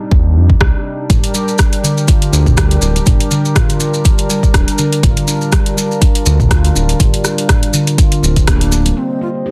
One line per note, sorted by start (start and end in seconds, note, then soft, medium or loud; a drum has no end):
0.00 1.06 C3 medium
0.00 8.93 G3 medium
0.00 1.06 D4 medium
0.00 1.06 D#4 medium
0.11 0.37 D#2 loud
0.11 kick loud
0.36 0.55 F2 medium
0.50 kick medium
0.61 0.71 C2 medium
0.61 kick loud
0.61 cross-stick loud
1.10 1.20 G1 loud
1.10 1.23 G3 loud
1.10 8.93 D4 medium
1.10 4.99 G4 medium
1.10 8.93 A#4 medium
1.10 kick loud
1.10 closed hi-hat medium
1.10 mid tom medium
1.10 maracas medium
1.24 closed hi-hat soft
1.24 maracas soft
1.34 1.47 G3 medium
1.34 maracas medium
1.48 maracas soft
1.58 1.72 D4 medium
1.58 kick loud
1.58 cross-stick loud
1.58 closed hi-hat medium
1.58 maracas medium
1.73 closed hi-hat soft
1.73 maracas soft
1.83 1.96 D3 loud
1.83 maracas medium
1.97 maracas soft
2.08 2.21 F4 medium
2.08 kick loud
2.08 closed hi-hat medium
2.08 maracas soft
2.22 closed hi-hat soft
2.22 maracas soft
2.32 2.77 D2 loud
2.32 2.45 D4 medium
2.32 maracas medium
2.46 kick medium
2.46 mid tom loud
2.46 maracas soft
2.57 2.70 G3 loud
2.57 kick loud
2.57 cross-stick loud
2.57 closed hi-hat medium
2.57 maracas medium
2.71 closed hi-hat soft
2.71 maracas soft
2.82 3.01 D1 loud
2.82 2.94 G3 medium
2.82 maracas medium
2.96 closed hi-hat soft
2.96 maracas soft
3.06 3.16 G1 loud
3.06 3.19 D4 medium
3.06 kick loud
3.06 closed hi-hat medium
3.06 mid tom medium
3.06 maracas soft
3.20 closed hi-hat soft
3.20 maracas soft
3.31 3.43 D3 loud
3.31 maracas medium
3.45 maracas soft
3.55 3.69 F4 medium
3.55 kick loud
3.55 cross-stick loud
3.55 closed hi-hat medium
3.55 mid tom medium
3.55 maracas soft
3.69 closed hi-hat soft
3.69 maracas soft
3.80 3.92 D4 medium
3.80 maracas medium
3.94 maracas soft
4.05 4.18 G3 medium
4.05 kick loud
4.05 closed hi-hat medium
4.05 maracas soft
4.18 closed hi-hat soft
4.18 maracas soft
4.29 4.42 G3 medium
4.29 maracas medium
4.43 kick medium
4.43 maracas soft
4.54 4.64 D1 medium
4.54 4.67 D4 medium
4.54 kick loud
4.54 cross-stick loud
4.54 closed hi-hat medium
4.54 maracas soft
4.68 closed hi-hat soft
4.68 maracas soft
4.78 4.91 D3 loud
4.78 maracas medium
4.93 closed hi-hat soft
4.93 maracas soft
5.03 5.13 G1 loud
5.03 8.93 F4 medium
5.03 5.16 F4 medium
5.03 kick loud
5.03 closed hi-hat medium
5.03 mid tom medium
5.03 maracas soft
5.17 closed hi-hat soft
5.17 maracas soft
5.28 5.40 D4 medium
5.28 maracas medium
5.41 maracas soft
5.52 5.65 G3 loud
5.52 kick loud
5.52 cross-stick loud
5.52 closed hi-hat medium
5.52 maracas soft
5.66 closed hi-hat soft
5.66 maracas soft
5.77 5.89 G3 medium
5.77 maracas medium
5.91 maracas soft
6.02 6.15 D4 medium
6.02 kick loud
6.02 closed hi-hat medium
6.02 maracas soft
6.15 closed hi-hat soft
6.15 maracas soft
6.26 6.71 D2 loud
6.26 6.38 D3 loud
6.26 maracas medium
6.40 kick medium
6.40 mid tom medium
6.40 maracas soft
6.51 6.64 F4 medium
6.51 kick loud
6.51 cross-stick loud
6.51 closed hi-hat medium
6.51 maracas medium
6.64 closed hi-hat soft
6.64 maracas soft
6.75 6.94 D1 loud
6.75 6.88 D4 medium
6.75 maracas medium
6.89 closed hi-hat soft
6.89 maracas soft
7.00 7.10 G1 loud
7.00 7.13 G3 loud
7.00 kick loud
7.00 closed hi-hat medium
7.00 mid tom medium
7.00 maracas medium
7.14 closed hi-hat soft
7.14 maracas soft
7.24 7.37 G3 medium
7.24 cross-stick medium
7.24 maracas medium
7.38 closed hi-hat soft
7.38 maracas soft
7.49 7.62 D4 medium
7.49 kick loud
7.49 cross-stick loud
7.49 closed hi-hat medium
7.49 mid tom medium
7.49 maracas medium
7.63 closed hi-hat soft
7.63 maracas soft
7.73 7.86 D3 loud
7.73 maracas medium
7.87 closed hi-hat soft
7.87 maracas soft
7.98 8.11 F4 medium
7.98 kick loud
7.98 closed hi-hat medium
7.98 maracas medium
8.12 closed hi-hat soft
8.12 maracas soft
8.23 8.92 D1 loud
8.23 8.35 C4 medium
8.23 maracas medium
8.36 kick medium
8.36 closed hi-hat soft
8.36 maracas soft
8.47 8.60 A#3 medium
8.47 8.99 D4 loud
8.47 kick loud
8.47 cross-stick loud
8.47 closed hi-hat medium
8.47 maracas medium
8.61 closed hi-hat soft
8.61 maracas soft
8.72 8.84 A#3 medium
8.72 maracas medium
8.86 8.96 G3 medium
8.86 closed hi-hat soft
8.86 maracas soft
8.97 9.51 C4 medium
8.97 9.10 C4 medium
8.97 9.21 C4 medium
8.97 9.51 G4 medium
8.97 9.51 C5 medium
8.97 9.51 D#5 medium
9.21 9.34 C4 medium
9.21 9.28 F4 loud
9.46 9.51 D#4 medium
9.46 9.51 G4 medium